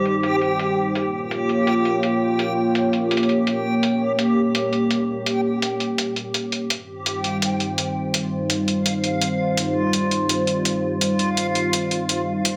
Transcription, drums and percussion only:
0.05 closed hi-hat
0.23 closed hi-hat
0.41 closed hi-hat
0.59 closed hi-hat
0.95 closed hi-hat
1.31 closed hi-hat
1.49 closed hi-hat
1.67 closed hi-hat
1.85 closed hi-hat
2.03 closed hi-hat
2.39 closed hi-hat
2.75 closed hi-hat
2.93 closed hi-hat
3.11 closed hi-hat
3.17 closed hi-hat
3.23 closed hi-hat
3.29 closed hi-hat
3.47 closed hi-hat
3.83 closed hi-hat
4.19 closed hi-hat
4.55 closed hi-hat
4.73 closed hi-hat
4.91 closed hi-hat
5.26 closed hi-hat
5.62 closed hi-hat
5.80 closed hi-hat
5.98 closed hi-hat
6.16 closed hi-hat
6.34 closed hi-hat
6.52 closed hi-hat
6.70 closed hi-hat
7.06 closed hi-hat
7.24 closed hi-hat
7.42 closed hi-hat
7.60 closed hi-hat
7.78 closed hi-hat
8.14 closed hi-hat
8.50 closed hi-hat
8.68 closed hi-hat
8.86 closed hi-hat
9.04 closed hi-hat
9.21 closed hi-hat
9.57 closed hi-hat
9.93 closed hi-hat
10.11 closed hi-hat
10.29 closed hi-hat
10.47 closed hi-hat
10.65 closed hi-hat
11.01 closed hi-hat
11.19 closed hi-hat
11.37 closed hi-hat
11.55 closed hi-hat
11.73 closed hi-hat
11.91 closed hi-hat
12.09 closed hi-hat
12.45 closed hi-hat

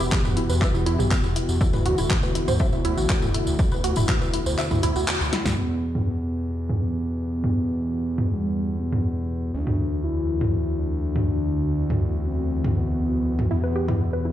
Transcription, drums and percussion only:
0.00 tambourine
0.12 kick, clap, tambourine
0.25 mid tom, tambourine
0.37 closed hi-hat
0.50 tambourine
0.62 kick, clap, tambourine
0.75 tambourine
0.86 closed hi-hat
0.99 mid tom, tambourine
1.11 kick, clap, tambourine
1.24 tambourine
1.36 closed hi-hat
1.49 tambourine
1.61 kick, tambourine
1.73 mid tom, tambourine
1.86 closed hi-hat
1.98 tambourine
2.10 kick, clap, tambourine
2.23 tambourine
2.35 closed hi-hat
2.48 mid tom, tambourine
2.59 kick, tambourine
2.72 tambourine
2.85 closed hi-hat
2.98 tambourine
3.10 kick, clap, tambourine
3.22 mid tom, tambourine
3.34 closed hi-hat
3.47 tambourine
3.59 kick, tambourine
3.72 tambourine
3.84 closed hi-hat
3.96 mid tom, tambourine
4.09 kick, clap
4.21 tambourine
4.34 closed hi-hat
4.46 tambourine
4.58 clap, tambourine
4.71 mid tom, tambourine
4.83 closed hi-hat
4.96 tambourine
5.08 clap, tambourine
5.21 tambourine
5.33 snare, closed hi-hat
5.46 snare, mid tom, tambourine
5.58 crash
5.95 mid tom
6.70 mid tom
7.44 mid tom
8.18 mid tom
8.93 mid tom
9.67 mid tom
10.41 mid tom
11.16 mid tom
11.90 mid tom
12.64 mid tom
13.39 mid tom
13.88 mid tom

